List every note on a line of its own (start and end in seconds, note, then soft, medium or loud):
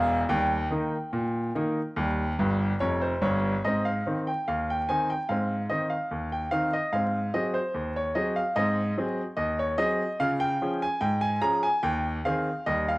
0.00 0.22 E1 medium
0.00 0.22 E2 medium
0.00 0.21 F5 loud
0.29 0.66 D#2 medium
0.29 0.55 G3 medium
0.29 3.18 G5 medium
0.71 0.94 D#3 soft
0.71 0.95 A#3 soft
0.71 0.95 D#4 soft
1.13 1.49 A#2 medium
1.55 1.78 D#3 soft
1.55 1.78 A#3 medium
1.55 1.79 D#4 medium
1.96 2.32 D#2 medium
1.96 2.22 G3 soft
2.39 2.70 G1 medium
2.39 2.70 G2 medium
2.80 3.12 F1 medium
2.80 3.12 F2 medium
2.80 3.01 C#5 medium
3.01 3.22 C5 medium
3.22 3.53 G1 medium
3.22 3.53 G2 medium
3.22 3.62 C#5 medium
3.64 4.00 G#2 medium
3.64 3.89 C4 soft
3.64 3.85 D#5 medium
3.85 4.18 F5 medium
4.06 4.29 D#3 soft
4.06 4.29 C4 soft
4.06 4.29 D#4 soft
4.27 4.47 G5 medium
4.48 4.82 D#2 soft
4.48 4.68 F5 medium
4.70 4.89 G5 medium
4.89 5.12 D#3 soft
4.89 5.12 C4 soft
4.89 5.12 D#4 soft
4.89 5.09 G#5 medium
5.10 5.30 G5 medium
5.29 5.64 G#2 medium
5.29 5.53 C4 soft
5.29 5.62 F5 medium
5.69 5.93 D#3 soft
5.69 5.93 C4 soft
5.69 5.93 D#4 soft
5.69 5.90 D#5 medium
5.90 6.29 F5 medium
6.11 6.46 D#2 medium
6.32 6.52 G5 medium
6.51 6.74 D#3 soft
6.51 6.74 C4 soft
6.51 6.75 D#4 soft
6.51 6.72 F5 medium
6.74 6.93 D#5 medium
6.93 7.28 G#2 medium
6.93 7.17 C4 soft
6.93 7.32 F5 medium
7.34 7.57 F#3 soft
7.34 7.57 C4 soft
7.34 7.57 G#4 soft
7.34 7.54 D#5 medium
7.54 7.93 C5 medium
7.74 8.10 D#2 soft
7.96 8.17 C#5 medium
8.15 8.38 F#3 soft
8.15 8.39 C4 soft
8.15 8.39 G#4 soft
8.15 8.36 D#5 medium
8.36 8.57 F5 medium
8.56 8.91 G#2 medium
8.56 8.81 C4 soft
8.56 9.22 D#5 medium
8.98 9.20 F#3 soft
8.98 9.21 C4 soft
8.98 9.21 G#4 soft
9.36 9.73 D#2 medium
9.36 9.58 D#5 medium
9.59 9.80 C#5 medium
9.78 10.01 F#3 soft
9.78 10.02 C4 soft
9.78 10.02 G#4 medium
9.78 10.18 D#5 medium
10.20 10.55 C#3 medium
10.20 10.44 F4 soft
10.20 10.41 F5 medium
10.40 10.79 G5 loud
10.61 10.84 F3 medium
10.61 10.84 C#4 soft
10.61 10.85 G#4 soft
10.82 11.03 G#5 medium
11.01 11.36 G#2 medium
11.01 11.22 G5 medium
11.21 11.43 G#5 medium
11.41 11.65 F3 soft
11.41 11.65 C#4 soft
11.41 11.65 G#4 medium
11.41 11.63 A#5 medium
11.63 11.84 G#5 medium
11.83 12.19 D#2 medium
11.83 12.16 G5 medium
12.25 12.48 D#3 soft
12.25 12.48 C4 soft
12.25 12.49 G#4 medium
12.25 12.65 F5 medium
12.66 12.98 D#2 medium
12.66 12.91 G3 soft
12.66 12.87 D#5 medium
12.89 12.98 F5 medium